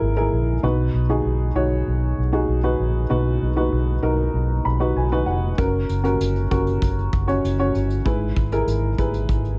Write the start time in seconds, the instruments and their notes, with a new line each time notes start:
Already playing: upright piano G#2 E4 G#4 A#4 B4
0.01 fingered electric bass G#1
0.17 upright piano E4 G#4 A#4
0.32 fingered electric bass A#1
0.63 fingered electric bass B1, upright piano B2 D#4 F#4 B4
0.94 fingered electric bass B1
1.09 upright piano D#4 F#4 G#4
1.25 fingered electric bass B1
1.55 fingered electric bass B1, upright piano D#4 F#4 C#5
1.88 fingered electric bass B1
2.18 fingered electric bass B1
2.32 upright piano D#4 F#4 G#4
2.48 fingered electric bass B1
2.64 upright piano D#4 F#4 B4
2.79 fingered electric bass A#1
3.10 fingered electric bass B1, upright piano B2 D#4 F#4 B4
3.42 fingered electric bass B1
3.56 upright piano D#4 F#4 B4
3.72 fingered electric bass B1
4.02 fingered electric bass B1, upright piano D#4 F#4 A#4
4.34 fingered electric bass B1
4.65 fingered electric bass B1, upright piano B5
4.80 upright piano D#4 F#4 B4
4.96 fingered electric bass B1, upright piano G#5
5.12 upright piano D#4 F#4 B4
5.26 fingered electric bass F1, upright piano F#5
5.58 fingered electric bass F#1, upright piano C#4 F#4 A#4, kick, closed hi-hat
5.89 fingered electric bass F#1, closed hi-hat
6.04 upright piano C#4 F#4 A#4, closed hi-hat
6.20 fingered electric bass F#1, closed hi-hat
6.35 closed hi-hat
6.51 fingered electric bass F#1, upright piano C#4 F#4 A#4, kick, closed hi-hat
6.67 closed hi-hat
6.82 fingered electric bass F#1, kick, closed hi-hat
6.98 closed hi-hat
7.13 fingered electric bass F#1, kick, closed hi-hat
7.28 upright piano C#4 F#4 C#5, closed hi-hat
7.44 fingered electric bass F#1, closed hi-hat
7.59 upright piano C#4 F#4 C#5, closed hi-hat
7.75 fingered electric bass G1, closed hi-hat
7.90 closed hi-hat
8.05 fingered electric bass G#1, upright piano G#2 E4 G#4 B4, kick, closed hi-hat
8.36 fingered electric bass G#1, kick, closed hi-hat
8.52 upright piano E4 G#4 A#4, closed hi-hat
8.67 fingered electric bass G#1, closed hi-hat
8.98 fingered electric bass G#1, upright piano E4 G#4 B4, kick, closed hi-hat
9.14 closed hi-hat
9.29 fingered electric bass G#1, kick, closed hi-hat
9.45 closed hi-hat